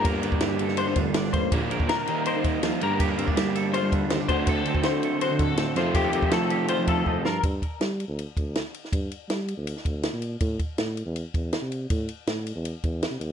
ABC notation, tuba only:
X:1
M:4/4
L:1/16
Q:1/4=162
K:Gm
V:1 name="Tuba" clef=bass
G,,,2 G,,, z G,,4- G,, G,, F,,,2 G,,,2 A,,,2 | B,,, z B,,, z B,,2 z3 E,3 E,, z G,,2- | G,,2 G,, z G,4- G, G,3 E,, z D,,2- | D,,2 D,, z D,4- D, D,3 D,, z F,,2- |
F,,2 F,, z F,4- F, F,3 F,,2 G,,2 | G,,2 z2 G,3 D,,2 z D,,3 z3 | G,,2 z2 G,3 D,,2 z D,,3 B,,3 | A,,2 z2 A,,3 =E,,2 z E,,3 C,3 |
A,,2 z2 A,,3 =E,,2 z E,,3 C, _E,,2 |]